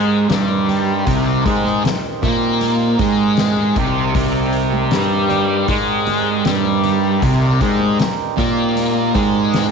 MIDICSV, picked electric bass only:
0, 0, Header, 1, 3, 480
1, 0, Start_track
1, 0, Key_signature, -3, "minor"
1, 0, Tempo, 769231
1, 667, Time_signature, 4, 2, 24, 8
1, 6061, End_track
2, 0, Start_track
2, 0, Title_t, "Picked electric bass"
2, 0, Program_c, 0, 34
2, 0, Note_on_c, 0, 44, 81
2, 162, Note_off_c, 0, 44, 0
2, 188, Note_on_c, 0, 43, 86
2, 643, Note_off_c, 0, 43, 0
2, 666, Note_on_c, 0, 36, 79
2, 890, Note_off_c, 0, 36, 0
2, 914, Note_on_c, 0, 44, 76
2, 1134, Note_off_c, 0, 44, 0
2, 1387, Note_on_c, 0, 46, 90
2, 1842, Note_off_c, 0, 46, 0
2, 1867, Note_on_c, 0, 44, 90
2, 2323, Note_off_c, 0, 44, 0
2, 2349, Note_on_c, 0, 36, 91
2, 2572, Note_off_c, 0, 36, 0
2, 2586, Note_on_c, 0, 36, 83
2, 3042, Note_off_c, 0, 36, 0
2, 3071, Note_on_c, 0, 43, 91
2, 3525, Note_off_c, 0, 43, 0
2, 3547, Note_on_c, 0, 44, 82
2, 4003, Note_off_c, 0, 44, 0
2, 4036, Note_on_c, 0, 43, 86
2, 4488, Note_off_c, 0, 43, 0
2, 4507, Note_on_c, 0, 36, 82
2, 4731, Note_off_c, 0, 36, 0
2, 4753, Note_on_c, 0, 44, 79
2, 4975, Note_off_c, 0, 44, 0
2, 5230, Note_on_c, 0, 46, 89
2, 5686, Note_off_c, 0, 46, 0
2, 5708, Note_on_c, 0, 44, 94
2, 6061, Note_off_c, 0, 44, 0
2, 6061, End_track
3, 0, Start_track
3, 0, Title_t, "Muted picked electric bass strokes"
3, 1150, Note_on_c, 9, 29, 39
3, 1212, Note_off_c, 9, 29, 0
3, 5003, Note_on_c, 9, 29, 38
3, 5065, Note_off_c, 9, 29, 0
3, 6061, End_track
0, 0, End_of_file